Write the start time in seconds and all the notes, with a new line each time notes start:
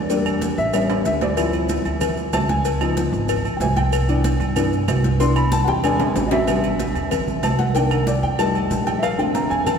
Already playing: E2
0.09 G3 A#3 D4, cowbell, high conga, low agogo, maracas
0.26 high conga, low agogo, claves, maracas
0.41 cowbell, high conga, maracas
0.57 A1 E5, high conga, maracas
0.73 G3 B3 C#4 E5, cowbell, high conga, low agogo, claves, maracas
0.89 high conga, high timbale, low agogo, maracas
1.05 D2 E5, cowbell, high conga, maracas
1.21 D5, cowbell, high conga, low timbale, low agogo, maracas
1.37 F3 C4 E4, cowbell, high conga, low agogo, claves, maracas
1.53 high conga, low agogo, maracas
1.69 cowbell, high conga, low agogo, maracas
1.85 D2, high conga, low agogo, maracas
2.01 cowbell, high conga, low conga, low agogo, claves, maracas
2.17 high conga, maracas
2.33 C#2 A5, cowbell, high conga, low timbale, low agogo, claves, maracas
2.49 G#5, cowbell, high conga, maracas
2.65 cowbell, high conga, low agogo, maracas
2.81 F3 B3 D#4, high conga, low agogo, claves, maracas
2.97 cowbell, high conga, maracas
3.13 G#1, high conga, maracas
3.29 cowbell, high conga, low agogo, claves, maracas
3.44 A#1, high conga, low agogo, maracas
3.57 C2 G5, high conga, maracas
3.61 G#5, cowbell, low timbale
3.76 G5, cowbell, high conga, low agogo, maracas
3.93 cowbell, high conga, low agogo, claves, maracas
4.08 E3 B3 D4, high conga, low agogo, maracas
4.24 cowbell, high conga, low agogo, maracas
4.40 G2, high conga, low agogo, maracas
4.56 E3 B3 D4, cowbell, high conga, low conga, low agogo, claves, maracas
4.72 high conga, maracas
4.88 C2, cowbell, high conga, low timbale, low agogo, claves, maracas
5.04 cowbell, high conga, maracas
5.19 E3 B3 D4 C6, cowbell, high conga, low agogo, maracas
5.36 B5, high conga, low agogo, claves, maracas
5.52 A5, cowbell, high conga, maracas
5.64 E2 F#5, high bongo, maracas
5.68 G5
5.83 G#3 C4 D4 G#5, cowbell, low bongo, low agogo, claves, maracas
5.99 A#1, low bongo, high conga, high timbale, low agogo, maracas
6.15 A1, cowbell, low bongo, high conga, low timbale, maracas
6.27 D#5, cowbell, low bongo
6.32 E5, high conga, low timbale, low agogo, maracas
6.47 C3 G3 B3, cowbell, high conga, low agogo, claves, maracas
6.64 high conga, low agogo, maracas
6.79 cowbell, high conga, low agogo, maracas
6.95 E2, high conga, low agogo, maracas
7.11 cowbell, high conga, low conga, low agogo, claves, maracas
7.28 high conga, low conga, maracas
7.43 C2 A5, cowbell, high conga, low timbale, low agogo, claves, maracas
7.59 F#5, cowbell, high conga, maracas
7.75 D#3 A#3 D4 G5, cowbell, low agogo, maracas
7.91 A#4, high conga, low agogo, claves, maracas
8.07 D5, cowbell, high conga, maracas
8.23 F2 G5, maracas
8.38 G3 A3 D#4 A5, cowbell, high conga, low agogo, claves, maracas
8.55 high conga, low agogo, maracas
8.71 A#1, cowbell, high conga, maracas
8.87 G5, cowbell, high conga, low agogo, maracas
8.98 E5
9.03 F5, cowbell, high conga, low agogo, claves, maracas
9.18 D3 A3 C4 G5, high conga, low agogo, maracas
9.35 A#5, cowbell, high conga, low agogo, maracas
9.50 F2 G#5, high conga, low agogo, maracas
9.66 A5, cowbell, high conga, low conga, low agogo, claves, maracas